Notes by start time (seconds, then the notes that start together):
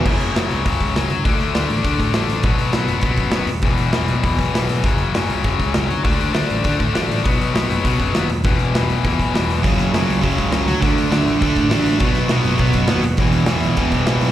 0.06 F#1 F#2 C#3 F#3, kick, crash
0.20 F#1, open hi-hat
0.36 F#1 F#2 C#3 F#3, snare, open hi-hat
0.50 C#2, open hi-hat
0.65 F#2 C#3 F#3, kick, open hi-hat
0.80 C#2, kick, open hi-hat
0.96 C#2 F#2 C#3 F#3, snare, open hi-hat
1.10 D2, open hi-hat
1.25 D2 D3 A3 D4, kick, open hi-hat
1.40 D2, open hi-hat
1.54 D2 D3 A3 D4, snare, open hi-hat
1.70 A1, open hi-hat
1.84 D3 A3 D4, kick, open hi-hat
1.99 A2, kick, open hi-hat
2.13 A1 D3 A3 D4, snare, open hi-hat
2.29 open hi-hat
2.43 B1 B2 F#3 B3, kick, open hi-hat
2.58 B1, open hi-hat
2.72 B1 B2 F#3 B3, snare, open hi-hat
2.88 F#1, open hi-hat
3.01 B2 F#3 B3, kick, open hi-hat
3.16 F#2, kick, open hi-hat
3.31 F#2 F#3, snare, open hi-hat
3.35 B2 B3
3.47 E1, open hi-hat
3.62 E1 E2 B2 E3, kick, open hi-hat
3.78 E1, open hi-hat
3.93 E1 E2 B2 E3, snare, open hi-hat
4.08 B1, open hi-hat
4.23 E2 B2 E3, kick, open hi-hat
4.38 B1, kick, open hi-hat
4.53 B1 E2 B2 E3, snare, open hi-hat
4.69 open hi-hat
4.83 F#1 F#2 C#3 F#3, kick, open hi-hat
4.98 F#1, open hi-hat
5.14 F#1 F#2 C#3 F#3, snare, open hi-hat
5.30 C#2, open hi-hat
5.44 F#2 C#3 F#3, kick, open hi-hat
5.59 C#2, kick, open hi-hat
5.74 C#2 F#2 C#3 F#3, snare, open hi-hat
5.90 D2, open hi-hat
6.04 D2 D3 A3 D4, kick, open hi-hat
6.20 D2, open hi-hat
6.33 D2 D3 A3 D4, snare, open hi-hat
6.50 A1, open hi-hat
6.64 D3 A3 D4, kick, open hi-hat
6.80 A2, kick, open hi-hat
6.94 A1 D3 A3 D4, snare, open hi-hat
7.12 open hi-hat
7.24 B1 B2 F#3 B3, kick, open hi-hat
7.40 B1, open hi-hat
7.54 B1 B2 F#3 B3, snare, open hi-hat
7.70 F#1, open hi-hat
7.85 B2 F#3 B3, kick, open hi-hat
7.99 F#2, kick, open hi-hat
8.14 D#2 B2 F#3 B3, snare, open hi-hat
8.29 E1, open hi-hat
8.44 E1 E2 B2 E3, kick, open hi-hat
8.58 E1, open hi-hat
8.73 E1 E2 B2 E3, snare, open hi-hat
8.87 B1, open hi-hat
9.04 E2 B2 E3, kick, open hi-hat
9.20 B1, kick, open hi-hat
9.33 E1 E2 B2 E3, snare, open hi-hat
9.50 open hi-hat
9.63 F#1 F#2 C#3 F#3, kick, open hi-hat
9.78 F#1, open hi-hat
9.92 F#1 F#2 C#3 F#3, snare, open hi-hat
10.07 C#2, open hi-hat
10.22 F#2 C#3 F#3, kick, open hi-hat
10.38 C#2, kick, open hi-hat
10.52 C#2 F#2 C#3 F#3, snare, open hi-hat
10.66 D2, open hi-hat
10.82 D2 D3 A3 D4, kick, open hi-hat
10.97 D2, open hi-hat
11.10 D2 D3 A3 D4, snare, open hi-hat
11.25 A1, open hi-hat
11.42 D3 A3 D4, kick, open hi-hat
11.56 A2, kick, open hi-hat
11.69 A1 D3 A3 D4, snare, open hi-hat
11.86 open hi-hat
12.00 B1 B2 F#3 B3, kick, open hi-hat
12.15 B1, open hi-hat
12.28 B1 B2 F#3 B3, snare, open hi-hat
12.32 B2
12.43 F#1, open hi-hat
12.58 B2 F#3 B3, kick, open hi-hat
12.73 F#2, kick, open hi-hat
12.87 D#2 B2 F#3 B3, snare, open hi-hat
13.02 E1, open hi-hat
13.17 E1 E2 B2 E3, kick, open hi-hat
13.32 E1, open hi-hat
13.46 E1 E2 B2 E3, snare, open hi-hat
13.61 B1, open hi-hat
13.77 E2 B2 E3, kick, open hi-hat
13.92 B1, kick, open hi-hat
14.07 B1 E2 B2 E3, snare, open hi-hat
14.21 open hi-hat